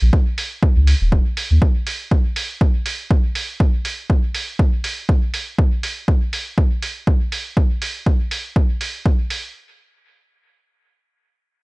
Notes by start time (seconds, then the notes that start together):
0.02 A#1
0.13 kick
0.38 open hi-hat
0.63 kick
0.76 C#2
0.87 open hi-hat
1.01 D#1
1.12 kick
1.37 open hi-hat
1.51 D#2
1.62 kick
1.87 open hi-hat
2.11 kick
2.36 open hi-hat
2.61 kick
2.86 open hi-hat
3.11 kick
3.35 open hi-hat
3.60 kick
3.85 open hi-hat
4.10 kick
4.34 open hi-hat
4.59 kick
4.84 open hi-hat
5.09 kick
5.34 open hi-hat
5.58 kick
5.83 open hi-hat
6.08 kick
6.33 open hi-hat
6.58 kick
6.82 open hi-hat
7.07 kick
7.32 open hi-hat
7.57 kick
7.82 open hi-hat
8.06 kick
8.31 open hi-hat
8.56 kick
8.81 open hi-hat
9.06 kick
9.30 open hi-hat